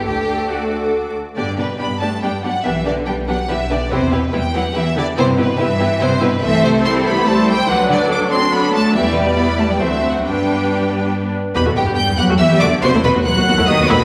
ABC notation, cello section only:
X:1
M:3/4
L:1/16
Q:1/4=141
K:G
V:1 name="Cello section" clef=bass
D8- D2 z2 | D,2 B,,2 B,2 A,2 G,2 F,2 | E,2 D,2 G,2 F,2 E,2 D,2 | C,2 B,,2 G,2 F,2 E,2 D,2 |
C,2 B,,2 E,4 C,2 B,,2 | E,2 C,2 C2 B,2 A,2 G,2 | F,2 D,2 D2 C2 B,2 A,2 | E,2 B,,2 B,2 A, G, E,3 F, |
G,8 z4 | [K:Em] B,,2 G,,2 G,2 F,2 E,2 D,2 | C,2 B,,2 F,4 ^D,2 B,,2 |]